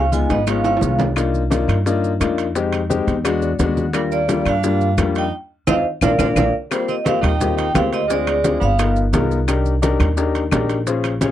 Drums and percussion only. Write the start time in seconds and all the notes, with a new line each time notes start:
0.12 high conga, maracas
0.30 low bongo, high conga, high timbale, maracas
0.47 low bongo, high conga, high timbale, claves, maracas
0.64 high conga, high timbale, maracas
0.77 high timbale
0.81 low bongo, high conga, maracas
0.99 low bongo, high conga, low timbale, maracas
1.16 high bongo, high conga, high timbale, claves, maracas
1.34 high conga, maracas
1.51 high bongo, high conga, high timbale, maracas
1.69 high conga, high timbale, claves, maracas
1.86 high bongo, high conga, maracas
2.04 high conga, maracas
2.21 high bongo, low bongo, high conga, high timbale, claves, maracas
2.38 high timbale, maracas
2.55 high bongo, high conga, maracas
2.73 high conga, high timbale, claves, maracas
2.90 high bongo, high conga, maracas
3.08 high bongo, high conga, high timbale, maracas
3.25 high bongo, high conga, high timbale, claves, maracas
3.42 high bongo, high conga, maracas
3.59 high bongo, low bongo, high conga, high timbale, maracas
3.77 high bongo, high conga, maracas
3.93 high bongo, high conga, high timbale, claves, maracas
4.12 high conga, maracas
4.29 high bongo, high conga, high timbale, maracas
4.46 high conga, high timbale, claves, maracas
4.63 high bongo, high conga, maracas
4.81 high conga, maracas
4.98 high bongo, low bongo, high conga, high timbale, claves, maracas
5.15 high timbale, maracas
5.67 low bongo, high conga, high timbale, claves, maracas
6.01 low bongo, high conga, high timbale, claves, maracas
6.19 low bongo, high conga, high timbale, claves, maracas
6.36 low bongo, high conga, high timbale, claves, maracas
6.71 high bongo, high conga, high timbale, claves, maracas
6.89 high conga, maracas
7.06 high bongo, high conga, high timbale, low timbale, maracas
7.23 high conga, low conga, high timbale, claves, maracas
7.40 high bongo, high conga, low conga, maracas
7.58 high conga, high timbale, maracas
7.75 high bongo, low bongo, high conga, high timbale, low timbale, claves, maracas
7.93 high conga, high timbale, maracas
8.10 high bongo, high conga, maracas
8.27 high bongo, high conga, high timbale, claves, maracas
8.44 high bongo, high conga, high timbale, low timbale, maracas
8.62 maracas
8.79 high bongo, high conga, high timbale, claves, maracas
8.96 high bongo, high conga, maracas
9.13 high bongo, low bongo, high conga, high timbale, low timbale, maracas
9.31 high bongo, maracas
9.48 high bongo, high conga, high timbale, claves, maracas
9.66 high conga, maracas
9.83 high bongo, high conga, high timbale, low timbale, maracas
10.00 high conga, low conga, high timbale, claves, maracas
10.17 high bongo, high conga, maracas
10.35 high conga, high timbale, maracas
10.51 high bongo, low bongo, high conga, high timbale, low timbale, claves, maracas
10.69 high conga, high timbale, maracas
10.87 high bongo, high conga, maracas
11.04 high bongo, high conga, high timbale, claves, maracas
11.21 high bongo, high conga, high timbale, low timbale, maracas